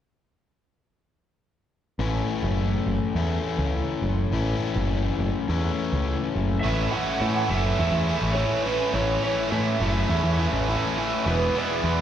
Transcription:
1.99 2.21 A1 medium
1.99 3.15 A2 medium
1.99 3.16 E3 medium
1.99 3.17 A3 medium
1.99 3.17 C#4 medium
1.99 3.18 E4 medium
2.43 2.76 F#1 medium
2.86 2.97 F#1 medium
3.15 3.37 E2 medium
3.15 4.32 A2 medium
3.15 4.32 E3 medium
3.15 4.33 A3 medium
3.15 4.34 C#4 medium
3.15 4.34 E4 medium
3.58 3.81 C#2 medium
4.02 4.24 F#1 medium
4.32 4.54 A1 medium
4.32 5.46 A2 medium
4.32 5.46 E3 medium
4.32 5.47 A3 medium
4.32 5.47 C#4 medium
4.32 5.47 E4 medium
4.76 5.09 F#1 medium
5.19 5.30 F#1 medium
5.48 5.70 E2 medium
5.48 6.62 A2 medium
5.48 6.63 E3 medium
5.48 6.63 A3 medium
5.48 6.63 C#4 medium
5.48 6.63 E4 medium
5.92 6.14 C#2 medium
6.35 6.57 F#1 medium
6.61 6.86 A1 medium
6.61 6.92 A2 medium
6.61 6.93 E3 medium
6.61 6.93 A3 medium
6.61 6.89 E5 medium
6.65 6.93 C#4 medium
6.65 6.94 E4 medium
6.91 7.21 A2 medium
6.91 7.21 E3 medium
6.91 7.22 A3 medium
6.91 7.22 C#4 medium
6.91 7.23 E4 medium
6.91 7.46 F#5 loud
7.21 7.43 A2 medium
7.21 7.49 A2 medium
7.21 7.50 E3 medium
7.21 7.51 A3 medium
7.21 7.51 C#4 medium
7.21 7.51 E4 medium
7.48 7.72 F#1 medium
7.48 7.78 A2 medium
7.48 7.79 E3 medium
7.48 7.79 A3 medium
7.48 8.33 E5 medium
7.52 7.79 C#4 medium
7.52 7.80 E4 loud
7.79 7.90 E2 medium
7.79 8.06 A2 medium
7.79 8.08 E3 medium
7.79 8.07 A3 medium
7.79 8.07 C#4 medium
7.79 8.09 E4 medium
7.92 8.15 E2 medium
8.07 8.35 A2 medium
8.07 8.36 E3 medium
8.07 8.37 A3 medium
8.07 8.37 C#4 medium
8.07 8.38 E4 medium
8.22 8.44 A1 medium
8.33 8.65 A2 medium
8.33 8.66 E3 medium
8.33 8.65 C#5 medium
8.38 8.65 A3 medium
8.38 8.66 C#4 medium
8.38 8.67 E4 medium
8.63 8.93 A2 medium
8.63 8.94 E3 medium
8.63 8.94 A3 medium
8.63 8.94 B4 medium
8.67 8.94 C#4 medium
8.67 8.95 E4 medium
8.93 9.16 A1 medium
8.93 9.21 A2 medium
8.93 9.22 E3 medium
8.93 9.22 A3 medium
8.93 9.23 C#4 medium
8.93 9.23 E4 medium
8.93 9.22 C#5 medium
9.22 9.50 A2 medium
9.22 9.51 E3 medium
9.22 9.51 A3 medium
9.22 9.51 C#4 medium
9.22 9.53 E4 medium
9.22 9.50 C#5 medium
9.51 9.80 A2 medium
9.51 9.74 A2 medium
9.51 9.81 E3 medium
9.51 9.80 A3 medium
9.51 9.81 C#4 medium
9.51 9.82 E4 medium
9.51 10.64 E5 medium
9.80 10.03 F#1 medium
9.80 10.09 A2 medium
9.80 10.10 E3 medium
9.80 10.10 A3 medium
9.80 10.10 C#4 medium
9.80 10.11 E4 medium
10.09 10.21 E2 medium
10.09 10.37 A2 medium
10.09 10.39 E3 medium
10.09 10.38 A3 medium
10.09 10.38 C#4 medium
10.09 10.39 E4 medium
10.23 10.46 E2 medium
10.38 10.67 A2 medium
10.38 10.69 E3 medium
10.38 10.68 A3 medium
10.38 10.69 C#4 medium
10.38 10.70 E4 loud
10.52 10.75 A1 medium
10.68 10.96 A2 medium
10.68 10.98 E3 medium
10.68 10.98 A3 medium
10.68 10.97 C#4 medium
10.68 11.00 E4 medium
10.98 11.25 A2 medium
10.98 11.25 E3 medium
10.98 11.25 A3 medium
10.98 11.25 C#4 medium
10.98 11.27 E4 medium
11.26 11.48 E1 medium
11.26 11.53 E2 medium
11.26 11.54 B2 medium
11.26 11.55 E3 medium
11.26 11.54 G#3 medium
11.26 11.54 B3 medium
11.26 11.56 E4 medium
11.26 11.58 B4 medium
11.55 11.82 E2 medium
11.55 11.83 B2 medium
11.55 11.84 E3 medium
11.55 11.83 G#3 medium
11.55 11.84 B3 medium
11.55 11.84 E4 medium
11.55 12.01 D5 medium
11.83 12.01 E2 medium
11.83 12.01 B2 medium
11.83 12.01 E3 medium
11.83 12.01 G#3 medium
11.83 12.01 B3 medium
11.83 12.01 E4 medium

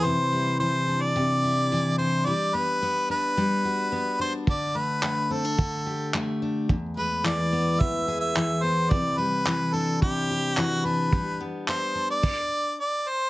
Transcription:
0.00 0.60 E3 medium
0.00 0.10 G#3 soft
0.00 0.91 E4 medium
0.04 1.15 C3 medium
0.04 0.59 C5 medium
0.32 2.27 G3 medium
0.60 1.71 E3 medium
0.60 1.03 C5 medium
0.88 1.99 D4 medium
1.02 1.98 D5 medium
1.16 2.32 C3 medium
1.44 2.32 E4 medium
1.72 2.27 E3 medium
1.98 3.09 D4 soft
1.98 2.27 C5 medium
2.26 3.37 G3 medium
2.26 2.56 D5 medium
2.54 2.81 B3 soft
2.54 3.09 B4 medium
2.82 3.91 B3 medium
3.10 4.19 D4 soft
3.10 4.17 B4 medium
3.37 4.47 G3 medium
3.65 4.53 F#4 medium
3.92 4.53 B3 medium
4.19 5.30 D4 soft
4.19 4.34 C5 medium
4.47 5.57 D3 medium
4.47 4.78 D5 medium
4.47 kick medium
4.75 5.02 A3 soft
4.75 5.34 B4 medium
5.03 6.13 A3 medium
5.03 clap medium
5.30 5.45 C4 soft
5.30 6.15 A4 medium
5.45 6.41 D4 soft
5.58 6.75 D3 medium
5.58 kick medium
5.86 6.75 G4 medium
6.14 6.75 A3 medium
6.14 clap medium
6.42 6.75 D4 medium
6.69 7.79 E2 medium
6.69 kick medium
6.97 8.97 G#3 medium
6.97 7.23 B4 medium
7.24 8.36 E3 medium
7.24 7.81 D5 medium
7.24 clap medium
7.53 8.62 B3 medium
7.80 8.96 E2 medium
7.80 8.20 E5 loud
7.80 kick medium
8.08 8.97 G#4 medium
8.20 8.64 E5 medium
8.36 9.46 E3 medium
8.36 clap medium
8.63 8.96 B3 soft
8.63 8.92 C5 medium
8.90 10.01 C3 medium
8.90 9.19 D5 medium
8.90 kick loud
9.18 11.12 G3 medium
9.18 9.75 B4 medium
9.46 10.56 E3 medium
9.46 clap medium
9.74 10.85 D4 medium
9.74 10.02 A4 medium
10.02 11.19 C3 medium
10.02 10.56 G4 medium
10.02 kick medium
10.31 11.19 G4 medium
10.56 11.13 E3 medium
10.56 10.87 F#4 medium
10.56 clap medium
10.85 11.95 D4 medium
10.85 11.41 B4 medium
11.13 12.29 G3 medium
11.13 kick medium
11.41 11.67 B3 medium
11.68 12.29 B3 medium
11.68 12.07 C5 medium
11.68 clap medium
11.95 12.79 D4 soft
12.10 12.75 D5 loud
12.23 kick medium
12.23 crash medium
12.81 13.10 D5 medium
13.09 13.30 C5 medium

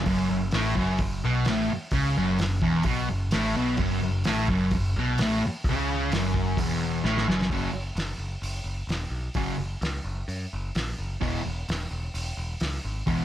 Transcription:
0.06 0.28 F#1 medium
0.06 0.29 F#2 loud
0.06 kick loud
0.06 open hi-hat medium
0.30 0.52 F#1 medium
0.30 0.49 F#2 medium
0.51 0.74 A1 loud
0.51 0.76 A2 loud
0.51 snare loud
0.51 open hi-hat medium
0.75 0.97 F#1 medium
0.75 0.99 F#2 loud
0.75 kick medium
0.98 1.21 F#1 medium
0.98 1.19 F#2 medium
0.98 kick loud
0.98 open hi-hat medium
1.24 1.45 B1 loud
1.24 1.46 B2 loud
1.45 1.68 A1 loud
1.45 snare loud
1.45 open hi-hat medium
1.49 1.70 A2 loud
1.69 muted picked electric bass stroke soft
1.69 muted distorted electric guitar stroke medium
1.91 2.14 C#2 medium
1.91 2.15 C#3 loud
1.91 kick loud
1.91 open hi-hat medium
2.16 2.38 F#1 medium
2.16 2.39 F#2 loud
2.38 2.61 F#1 medium
2.38 2.58 F#2 medium
2.38 snare loud
2.38 open hi-hat medium
2.62 2.84 E1 loud
2.62 2.85 E2 loud
2.62 kick medium
2.83 3.07 B1 medium
2.83 3.08 B2 loud
2.83 kick loud
2.83 open hi-hat medium
3.09 3.31 F#1 medium
3.09 3.28 F#2 medium
3.31 3.54 A1 loud
3.31 3.55 A2 loud
3.31 snare loud
3.31 open hi-hat medium
3.57 3.77 B1 loud
3.57 3.79 B2 loud
3.77 4.00 F#1 medium
3.77 4.00 F#2 loud
3.77 kick loud
3.77 open hi-hat medium
4.02 4.24 F#1 medium
4.02 4.21 F#2 medium
4.24 4.47 A1 loud
4.24 4.48 A2 loud
4.24 snare loud
4.24 open hi-hat medium
4.48 4.70 F#1 loud
4.48 4.71 F#2 loud
4.48 kick medium
4.71 4.93 F#1 medium
4.71 4.92 F#2 medium
4.71 kick loud
4.71 open hi-hat medium
4.96 5.17 B1 loud
4.96 5.19 B2 loud
5.18 5.40 A1 loud
5.18 5.42 A2 loud
5.18 snare loud
5.18 open hi-hat medium
5.42 muted picked electric bass stroke soft
5.47 muted distorted electric guitar stroke medium
5.64 6.08 C#2 loud
5.64 kick loud
5.64 open hi-hat medium
5.69 6.12 C#3 loud
6.11 6.54 F#1 loud
6.11 6.59 F#2 loud
6.11 snare loud
6.11 open hi-hat medium
6.34 kick medium
6.57 7.00 E1 loud
6.57 7.04 E2 loud
6.57 kick loud
6.57 open hi-hat medium
7.04 7.25 A1 loud
7.04 7.27 A2 loud
7.04 snare medium
7.17 snare medium
7.27 7.49 F#1 loud
7.27 7.49 F#2 loud
7.27 snare loud
7.41 snare medium
7.50 7.67 F#1 medium
7.50 7.69 F#2 medium
7.50 7.70 C#3 loud
7.50 7.70 F#3 loud
7.50 kick loud
7.50 open hi-hat medium
7.73 7.90 F#1 medium
7.95 8.12 F#1 medium
7.95 snare loud
7.95 open hi-hat medium
8.18 8.35 F#1 medium
8.42 8.59 F#1 loud
8.42 open hi-hat medium
8.64 8.81 F#1 medium
8.87 9.05 E1 medium
8.87 snare loud
8.87 open hi-hat medium
9.10 9.28 B1 medium
9.34 9.52 F#1 medium
9.34 9.55 F#2 medium
9.34 9.55 C#3 loud
9.34 9.55 F#3 loud
9.34 kick loud
9.34 open hi-hat medium
9.58 9.75 F#1 medium
9.81 9.98 C#2 medium
9.81 snare loud
9.81 open hi-hat medium
10.04 10.22 F#1 medium
10.28 10.45 F#2 medium
10.28 open hi-hat medium
10.53 10.69 F#1 medium
10.75 10.92 A#1 loud
10.75 snare loud
10.75 open hi-hat medium
10.98 11.15 F#1 medium
11.21 11.39 E1 medium
11.21 11.40 E2 loud
11.21 11.40 B2 loud
11.21 11.41 E3 loud
11.21 kick loud
11.21 open hi-hat medium
11.46 11.62 E1 medium
11.68 11.85 E1 loud
11.68 snare loud
11.68 open hi-hat medium
11.91 12.08 E1 medium
12.14 12.31 E1 medium
12.14 open hi-hat medium
12.37 12.54 E1 medium
12.60 12.78 C#2 loud
12.60 snare loud
12.60 open hi-hat medium
12.84 13.01 G#1 medium
13.06 13.23 E1 medium
13.06 13.25 E2 loud
13.06 13.25 B2 loud
13.06 13.25 E3 medium
13.06 kick loud
13.06 open hi-hat medium

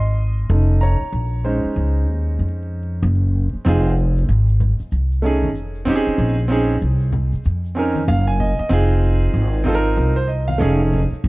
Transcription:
0.00 0.47 G#1 medium
0.00 0.78 D#5 medium
0.00 0.84 C6 medium
0.50 0.98 F1 loud
0.50 0.95 A3 medium
0.50 0.95 C#4 soft
0.50 0.96 D#4 medium
0.81 2.99 C#5 medium
0.81 2.98 A#5 medium
1.01 muted upright bass stroke soft
1.12 1.61 A#1 loud
1.44 3.62 G#3 medium
1.44 3.62 C#4 medium
1.44 3.62 D#4 medium
1.44 3.62 C5 medium
1.64 muted upright bass stroke soft
1.76 2.07 C#2 medium
2.07 2.38 D#2 medium
2.39 2.99 F2 medium
3.03 3.51 F#1 loud
3.53 muted upright bass stroke soft
3.65 4.26 F1 loud
3.65 3.90 C4 medium
3.65 3.90 D#4 medium
3.65 3.91 F4 medium
3.65 3.92 G#4 medium
3.65 shaker medium
3.85 shaker soft
3.97 shaker soft
4.17 shaker medium
4.29 4.77 G#1 medium
4.29 shaker medium
4.48 shaker soft
4.60 low conga medium
4.60 shaker medium
4.79 muted upright bass stroke medium
4.79 shaker medium
4.92 5.55 C2 medium
4.92 shaker medium
5.11 shaker soft
5.22 5.47 A3 medium
5.22 5.48 C#4 medium
5.22 5.49 D#4 medium
5.22 5.49 G#4 medium
5.22 shaker soft
5.43 high conga medium
5.43 shaker soft
5.55 6.04 F1 loud
5.55 shaker medium
5.75 shaker soft
5.85 6.33 C4 medium
5.85 6.34 C#4 medium
5.85 6.35 D#4 medium
5.85 low conga medium
5.85 shaker soft
5.89 5.96 G4 medium
5.96 6.39 G#4 loud
6.06 muted upright bass stroke soft
6.06 shaker soft
6.18 6.78 A#1 loud
6.18 shaker medium
6.38 shaker soft
6.48 6.73 C4 medium
6.48 6.74 C#4 medium
6.48 6.75 D#4 medium
6.48 shaker soft
6.52 6.75 G#4 medium
6.69 shaker medium
6.81 7.30 C2 medium
6.81 shaker medium
7.00 shaker soft
7.12 low conga medium
7.12 shaker soft
7.32 muted upright bass stroke soft
7.32 shaker medium
7.44 8.05 F2 medium
7.44 shaker medium
7.65 shaker soft
7.75 8.00 C4 medium
7.75 8.01 C#4 medium
7.75 8.01 D#4 medium
7.75 8.02 A#4 medium
7.75 8.06 G#5 medium
7.75 shaker soft
7.96 high conga medium
7.96 shaker soft
8.08 8.56 F#1 loud
8.08 8.27 F5 medium
8.08 shaker medium
8.27 8.57 G#5 medium
8.27 shaker soft
8.40 8.58 D#5 medium
8.40 low conga medium
8.40 shaker soft
8.59 8.89 D#5 medium
8.59 muted upright bass stroke soft
8.59 shaker soft
8.69 9.31 F1 loud
8.69 9.60 C4 medium
8.69 9.61 D#4 medium
8.69 9.61 F4 medium
8.69 9.62 G#4 loud
8.69 shaker medium
8.90 shaker soft
9.02 shaker soft
9.22 shaker medium
9.34 9.94 G#1 medium
9.34 shaker medium
9.53 shaker soft
9.64 10.12 C4 medium
9.64 10.13 D#4 medium
9.64 10.13 F4 medium
9.64 low conga medium
9.64 shaker soft
9.68 9.75 A4 medium
9.75 9.96 A#4 loud
9.85 shaker medium
9.97 10.57 C2 medium
9.97 10.16 A#4 medium
9.97 shaker medium
10.16 10.28 C5 medium
10.16 shaker soft
10.28 10.47 D#5 medium
10.28 shaker soft
10.48 10.78 F5 medium
10.48 high conga medium
10.48 shaker soft
10.58 11.09 F1 loud
10.58 10.99 A3 medium
10.58 10.99 C#4 medium
10.58 11.00 D#4 medium
10.58 11.01 G#4 medium
10.58 shaker medium
10.81 shaker soft
10.93 low conga medium
10.93 shaker soft
11.11 muted upright bass stroke soft
11.11 shaker soft
11.24 11.28 A#1 loud
11.24 shaker medium

